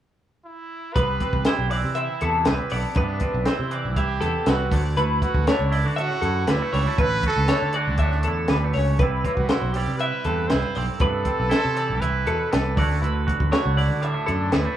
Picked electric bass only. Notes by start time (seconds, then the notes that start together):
0.96 C2
1.33 C2
1.59 B1
1.84 C3
2.22 E2
2.47 C2
2.72 B1
2.96 G2
3.34 B1
3.59 C3
3.85 C2
4.22 E2
4.47 C2
4.72 D2
4.97 D2
5.35 D2
5.59 C#2
5.85 D3
6.22 F#2
6.48 D2
6.73 C#2
6.99 A1
7.36 C#2
7.62 D3
7.87 D2
8.25 E2
8.50 D2
8.75 C#2
8.99 C2
9.37 C2
9.62 B1
9.87 C3
10.25 E2
10.51 C2
10.77 B1
11.01 G2
11.40 B1
11.65 C3
11.90 C2
12.27 E2
12.54 C2
12.78 D2
13.03 D2
13.41 D2
13.66 C#2
13.90 D3
14.28 F#2
14.53 D2